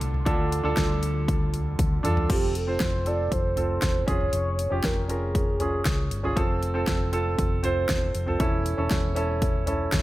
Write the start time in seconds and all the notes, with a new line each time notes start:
Already playing: D3 A3 D4 F4 A4
0.01 C2, closed hi-hat
0.14 floor tom
0.25 D2 D3 G3 D4 F4 A4, kick, closed hi-hat
0.52 closed hi-hat
0.63 D2 D4 F4 A4
0.77 D2, kick, snare, closed hi-hat
1.03 closed hi-hat
1.28 kick, closed hi-hat
1.54 closed hi-hat, floor tom
1.79 D2, kick, closed hi-hat, high tom
2.03 E2 D4 F4 A4, closed hi-hat, mid tom
2.17 floor tom
2.29 F1 C4 F4 G4 A4, kick, closed hi-hat, crash
2.55 A4, closed hi-hat
2.67 C4 F4 C5
2.80 F1 C5, kick, snare, closed hi-hat
3.05 C4 F4 A4 D5, closed hi-hat
3.32 F1 C5, kick, closed hi-hat
3.56 C4 F4 A4, closed hi-hat, floor tom
3.70 C5
3.82 E1, kick, snare, closed hi-hat
4.07 F1 C#4 F4 G#4 C#5, kick, closed hi-hat
4.21 floor tom
4.33 F1, closed hi-hat
4.59 closed hi-hat
4.70 F1 C#4 F4 G4
4.84 F1 A#4, kick, snare, closed hi-hat
5.08 C#4 F4 G#4 A#4, closed hi-hat
5.35 kick, closed hi-hat
5.60 C#4 F4 G#4, closed hi-hat, floor tom
5.85 C#2, kick, snare, closed hi-hat
6.11 G1, closed hi-hat
6.23 C#4 F4 G#4, floor tom
6.36 F1 C4 F4 A4, kick, closed hi-hat
6.63 closed hi-hat
6.74 C4 F4 A4
6.87 F1, kick, snare, closed hi-hat
7.12 C4 F4 A4, closed hi-hat
7.39 F1, kick, closed hi-hat
7.63 C4 F4 C5, closed hi-hat, floor tom
7.89 E1, kick, snare, closed hi-hat
8.15 F1, closed hi-hat
8.26 C4 F4 A4, floor tom
8.39 E1 E3 C#4 E4 A4, kick, closed hi-hat
8.66 closed hi-hat
8.77 E1 C#4 E4 A4
8.91 E1, kick, snare, closed hi-hat
9.15 C#4 E4 A4, closed hi-hat
9.42 kick, closed hi-hat
9.66 C#4 E4 A4, closed hi-hat, floor tom
9.92 E1, kick, snare, closed hi-hat